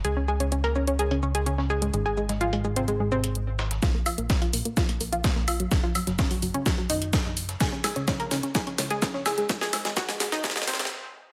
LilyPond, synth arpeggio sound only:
\new Staff \with { instrumentName = "Synth arpeggio sound" } { \time 4/4 \key bes \minor \tempo 4 = 127 aes'16 des'16 aes'16 des'16 des'16 bes'16 des'16 des'16 aes'16 des'16 des'16 aes'16 des'16 des'16 aes'16 aes16 | aes16 aes'16 aes16 aes16 f'16 aes16 aes16 c'16 aes16 aes16 c'4~ c'16 r16 | f'16 bes16 f'16 bes16 bes16 f'16 bes16 bes16 f'16 bes16 bes16 f'16 bes16 bes16 f'16 ges16 | ges16 f'16 ges16 ges16 des'16 ges16 ges16 des'16 ges16 ges16 ees'4~ ees'16 r16 |
aes'16 des'16 aes'16 des'16 des'16 bes'16 des'16 des'16 aes'16 des'16 des'16 aes'16 des'16 des'16 aes'16 aes16 | aes16 aes'16 aes16 aes16 ges'16 aes16 aes16 ees'16 aes16 aes16 c'8 r4 | }